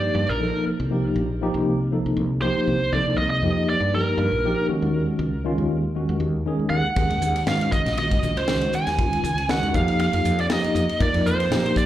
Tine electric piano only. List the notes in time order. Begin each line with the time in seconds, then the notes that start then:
Already playing: F3 A#3 D#4 G4
0.40 F3 A#3 D#4 A4
0.90 F3 A#3 D#4 G4
1.41 F3 A#3 D#4 G4
1.91 F3 A#3 D#4 A4
2.42 F3 A#3 D#4 G4
2.92 F3 A#3 D#4 A4
3.44 F3 A#3 D#4 G4
3.93 F3 A#3 D#4 G4
4.44 F3 A#3 D#4 G4
4.68 D#3 G#3 C#4 F#4
5.44 D#3 G#3 C#4 F4
5.95 D#3 G#3 C#4 F#4
6.46 D#3 G#3 C#4 G#4
6.95 D#3 G#3 C#4 G#4
7.46 D#3 G#3 C#4 F#4
7.97 D#3 G#3 C#4 F#4
8.48 D#3 G#3 C#4 F#4
8.98 D#3 G#3 C#4 F4
9.48 D#3 G#3 C#4 F#4
9.73 F3 A#3 D#4 G4
10.49 F3 A#3 D#4 G4
10.98 F3 A#3 D#4 A#4
11.50 F3 A#3 D#4 G4